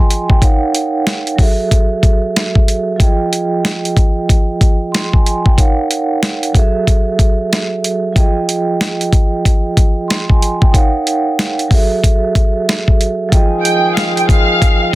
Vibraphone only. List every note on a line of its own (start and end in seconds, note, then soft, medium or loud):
0.00 0.36 F3 medium
0.00 0.37 F4 medium
0.00 0.38 G#4 medium
0.00 0.39 D#5 medium
0.00 0.27 G5 medium
0.00 0.27 G#5 medium
0.00 0.44 C6 medium
0.28 0.59 G5 medium
0.40 1.38 D#4 medium
0.40 1.38 A#4 medium
0.40 1.39 C#5 medium
0.40 1.39 F5 medium
0.40 1.39 F#5 medium
1.36 2.95 F#3 medium
1.36 2.96 F#4 medium
1.36 2.97 G#4 medium
1.40 2.98 A4 medium
1.40 2.98 E5 medium
2.96 5.52 F3 medium
2.96 5.53 F4 medium
2.96 5.43 G5 medium
3.01 5.54 G#4 medium
3.01 5.55 D#5 medium
4.92 5.11 C6 medium
5.13 5.43 G#5 medium
5.44 5.75 G5 medium
5.56 6.54 D#4 medium
5.56 6.54 A#4 medium
5.56 6.55 C#5 medium
5.56 6.55 F5 medium
5.56 6.55 F#5 medium
6.52 8.11 F#3 medium
6.52 8.12 F#4 medium
6.52 8.13 G#4 medium
6.56 8.13 A4 medium
6.56 8.14 E5 medium
8.12 10.68 F3 medium
8.12 10.69 F4 medium
8.12 10.59 G5 medium
8.17 10.70 G#4 medium
8.17 10.71 D#5 medium
10.08 10.27 C6 medium
10.29 10.59 G#5 medium
10.61 10.91 G5 medium
10.72 11.70 D#4 medium
10.72 11.70 A#4 medium
10.72 11.71 C#5 medium
10.72 11.71 F5 medium
10.72 11.71 F#5 medium
11.68 13.27 F#3 medium
11.68 13.28 F#4 medium
11.68 13.29 G#4 medium
11.72 13.30 A4 medium
11.72 13.30 E5 medium
13.29 14.95 F3 medium
13.29 14.95 F4 medium
13.29 14.95 G5 medium
13.33 14.95 G#4 medium
13.33 14.95 D#5 medium